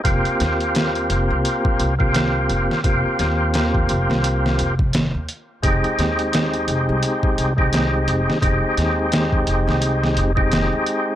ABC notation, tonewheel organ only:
X:1
M:4/4
L:1/16
Q:"Swing 16ths" 1/4=86
K:Fm
V:1 name="Tonewheel organ"
[B,CFG]8- [B,CFG]3 [B,CFG]4- [B,CFG] | [B,CFG]8- [B,CFG]3 z4 z | [A,CEG]8- [A,CEG]3 [A,CEG]4- [A,CEG] | [A,CEG]8- [A,CEG]3 [A,CEG]4- [A,CEG] |]